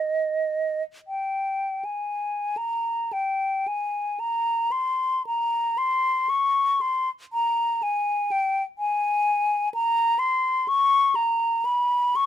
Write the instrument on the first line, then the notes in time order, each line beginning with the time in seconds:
flute
Already playing: D#5
1.08 G5
1.85 G#5
2.57 A#5
3.13 G5
3.68 G#5
4.20 A#5
4.72 C6
5.27 A#5
5.78 C6
6.29 C#6
6.81 C6
7.33 A#5
7.83 G#5
8.32 G5
8.79 G#5
9.74 A#5
10.19 C6
10.68 C#6
11.15 A#5
11.65 B5
12.16 C#6